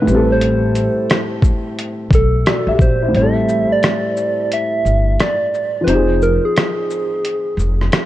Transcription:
Already playing: B4
0.02 A2
0.06 A1 G3, shaker
0.10 C4
0.15 A4
0.32 C5
0.41 C5, closed hi-hat
0.75 closed hi-hat, shaker
1.10 cross-stick, closed hi-hat
1.42 kick, shaker
1.79 closed hi-hat
2.11 B1, kick, closed hi-hat, shaker
2.15 A4
2.46 F#4 D5, cross-stick, closed hi-hat
2.67 A1 G4 E5
2.79 A#1 C5, kick, shaker
3.02 E4 C5
3.08 A2
3.13 A1 G3, closed hi-hat
3.17 C4 E5
3.21 A4
3.49 shaker
3.72 D5
3.83 cross-stick, closed hi-hat
4.17 shaker
4.52 E5, closed hi-hat
4.85 G1, shaker
5.20 D5, cross-stick, closed hi-hat
5.54 shaker
5.81 F3 B4
5.85 F1 C4 C5, closed hi-hat
5.90 D#4
5.94 G#4
6.22 A#4, shaker
6.45 G#4
6.57 cross-stick, closed hi-hat
6.91 shaker
7.25 closed hi-hat
7.57 F1, shaker
7.81 cross-stick
7.92 cross-stick, closed hi-hat

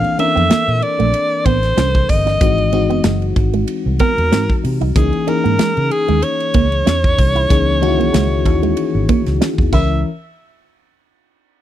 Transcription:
Already playing: E3 A#3 C4 D4 A4 F5
0.04 muted clean electric guitar stroke, ride
0.18 E3 A#3 C4 C#4 D4 A#4 E5, ride
0.35 F2 B3, ride
0.50 A#3, muted fingered electric bass stroke, snare, ride
0.68 A#2, ride
0.82 D5, muted clean electric guitar stroke, ride
0.99 A#1 A3, ride
1.14 ride
1.45 A1 B3 C5, kick, ride
1.63 snare, ride
1.77 C2 C#4, snare, ride
1.95 kick
2.09 G1 D#5, muted clean electric guitar stroke, kick, open hi-hat, ride
2.26 D4, snare, ride
2.41 G#1 E3 G#3 C4 D#4 F#4, kick, hi-hat pedal, ride
2.58 muted clean electric guitar stroke, ride
2.72 E3 G#3 C4 D#4 F#4, ride
2.90 F#1 B3, ride
3.04 F#1 G#3, snare, ride
3.22 ride
3.36 G#1, muted clean electric guitar stroke, kick, ride
3.53 G#3, ride
3.68 ride
3.86 C2
3.99 B3 A#4, kick, ride
4.18 E2, ride
4.32 G#2 C4, snare, ride
4.50 kick
4.64 C3, muted clean electric guitar stroke, open hi-hat, ride
4.81 C2 D#4, ride
4.95 C#2 E3 A#3 C#4 D#4 G#4, kick, hi-hat pedal, ride
5.13 muted clean electric guitar stroke, ride
5.27 E3 A#3 C#4 D#4 G#4 A#4, ride
5.44 G#2 A#3, ride
5.59 G#3, muted fingered electric bass stroke, snare, ride
5.77 C#3, ride
5.91 G#4, muted clean electric guitar stroke, ride
6.08 D#2 G#3, ride
6.22 C#5, ride
6.40 ride
6.54 C#2 A#3, kick, ride
6.72 ride
6.86 E2 C#4, snare, ride
7.04 kick
7.18 C2, muted clean electric guitar stroke, kick, open hi-hat, ride
7.35 E4, ride
7.49 C#2 E3 A#3 C#4 D#4 G#4, kick, hi-hat pedal, ride
7.67 muted clean electric guitar stroke
7.81 D#3 A#3 C#4 D#4 F#4, ride
7.88 E4
7.99 B1 A#3, ride
8.13 C#2 G#3, snare, ride
8.45 D#2, muted clean electric guitar stroke, kick, ride
8.63 G#3, ride
8.77 ride
8.95 G#1
9.09 A#3, kick, ride
9.26 C#2, snare, ride
9.41 C#4, snare, ride
9.58 E2, kick
9.72 C#2 E3 C#4 E4 A#4 E5, kick, crash

